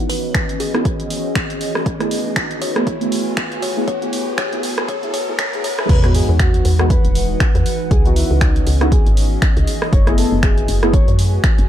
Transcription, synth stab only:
Already playing: B3
0.00 D#4 E4 F#4
0.74 B3 D#4 E4 F#4
1.99 A3 B3 E4 G#4
2.75 A3 B3 E4 G#4
3.00 A3 B3 E4 G#4
3.76 A3 B3 E4 G#4
4.01 A3 B3 E4 G#4
4.51 A3 B3 E4 G#4
5.02 A3 B3 E4 G#4
5.27 A3 B3 E4 G#4
5.52 A3 B3 E4 G#4
5.77 A3 B3 E4 G#4
6.03 G#3 B3 D#4 F#4
6.79 G#3 B3 D#4 F#4
8.04 E3 B3 D#4 F#4
8.81 B3 D#4 E4 F#4
10.06 A3 B3 E4 G#4
10.82 A3 B3 E4 G#4

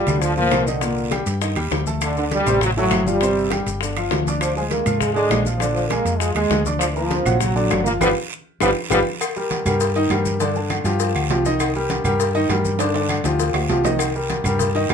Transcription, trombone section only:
Already playing: G3
0.21 F3
0.37 F3
0.67 D3
2.03 D3
2.19 D3
2.34 G3
2.64 F#3
2.79 F#3
3.09 G3
4.41 F3
4.56 F3
4.71 A#3
5.01 G#3
5.14 G#3
5.58 F3
5.73 F3
5.89 A#3
6.18 G#3
6.33 G#3
6.79 F3
6.94 F3
7.39 F#3
7.84 A#3
8.01 F3 G3 B3
8.62 F3 G3 B3
8.91 F3 G3 B3

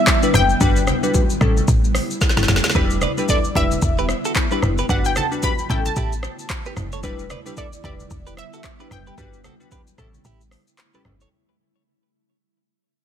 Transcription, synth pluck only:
Already playing: E5
0.35 G5
3.30 D5
3.56 E5
4.90 F#5
5.06 G5
5.17 A5
5.43 B5
5.70 G5
5.86 A5
7.58 D5
7.85 D5
8.38 E5
8.92 G5

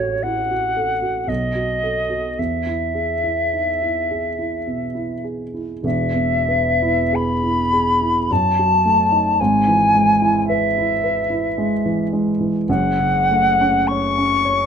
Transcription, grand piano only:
Already playing: A1 F#4 A4
0.24 E4
0.51 F#4
0.77 A4
1.02 F#4
1.27 B1
1.55 F#4
1.83 A4
2.10 F#4
2.39 E2
2.67 E4
2.95 G#4
3.24 E4
3.53 D#4
3.83 E4
4.11 G#4
4.39 E4
4.67 B2
4.95 E4
5.24 G#4
5.54 E4
5.83 E1 E2
6.15 B2
6.48 B3
6.82 E4
7.13 G#4
7.43 E4
7.73 G#4
8.01 E4
8.31 F#2
8.59 F#3
8.85 A3
9.12 D#4
9.40 G#1 G#2
9.68 E3
9.95 G#3
10.22 E4
10.50 B4
10.78 E4
11.04 B4
11.30 E4
11.58 G#3
11.86 E3
12.13 G#3
12.40 E3
12.69 F#1 F#2
13.00 C#3
13.31 A3
13.61 C#4
13.91 C#5
14.18 C#4
14.45 C#5

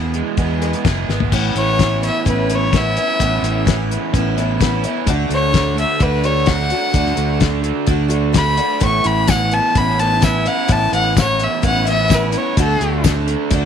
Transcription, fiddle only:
1.57 C#5
2.05 E5
2.29 B4
2.55 C#5
2.75 E5
5.34 C#5
5.79 E5
6.02 B4
6.25 C#5
6.47 F#5
8.36 B5
8.84 C#6
9.06 B5
9.30 F#5
9.53 A5
9.77 B5
9.99 A5
10.23 E5
10.47 F#5
10.72 A5
10.94 F#5
11.20 C#5
11.43 E5
11.65 F#5
11.89 E5
12.15 B4
12.37 C#5
12.59 A4

